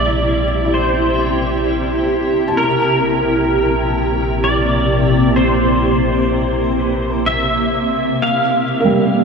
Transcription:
0.00 2.53 A#1 medium
0.00 8.22 C3 medium
0.00 0.43 G3 medium
0.00 2.59 A#3 medium
0.00 8.22 E4 medium
0.00 8.22 G4 medium
0.00 0.77 D5 medium
0.65 2.67 E4 medium
0.74 2.08 C5 medium
2.48 4.57 A5 medium
2.57 8.17 A#1 medium
2.57 3.93 A#4 loud
2.73 8.21 A#3 medium
4.44 5.36 D5 medium
5.36 7.22 C5 medium
7.26 8.22 E5 medium
8.22 9.24 A#2 medium
8.22 9.24 F5 medium
8.69 9.24 A#3 medium
8.80 9.24 A#4 medium
8.85 9.24 G3 medium

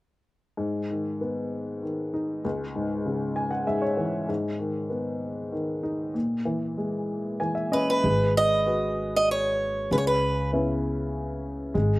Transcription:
0.57 2.40 G#2 soft
0.91 1.81 D#3 soft
1.21 2.41 B3 soft
1.83 2.42 D#3 soft
2.14 2.44 D#4 soft
2.44 4.25 C#2 soft
2.76 3.65 G#2 soft
3.06 4.25 C#3 soft
3.36 3.51 G#5 medium
3.51 3.66 F#5 soft
3.67 4.27 G#2 soft
3.67 3.82 E5 medium
3.82 4.25 C#5 soft
3.97 4.28 E3 soft
4.29 6.11 G#2 soft
4.59 5.51 D#3 soft
4.90 6.11 B3 soft
5.52 6.13 D#3 soft
5.83 6.14 D#4 soft
6.14 7.98 A#2 soft
6.45 7.39 E3 soft
6.77 7.99 G#3 soft
7.40 8.01 E3 soft
7.40 7.54 G#5 medium
7.55 7.70 E5 soft
7.72 8.02 C#4 soft
7.72 7.88 B4 medium
7.72 8.01 D#5 soft
7.90 8.32 B4 medium
8.03 9.87 G#1 medium
8.03 9.86 G#3 soft
8.37 9.15 D#5 medium
8.66 9.87 F#4 soft
8.66 9.87 G#4 soft
8.66 9.87 B4 soft
9.16 9.30 D#5 medium
9.31 9.92 C#5 medium
9.91 11.72 C#2 medium
9.91 11.72 C#3 medium
9.91 9.97 B4 medium
9.98 10.04 C#5 soft
10.07 10.50 B4 medium
10.53 11.72 B3 soft
10.53 11.72 C#4 soft
10.53 11.72 E4 soft
11.74 11.99 G#1 medium
11.74 11.99 G#3 medium

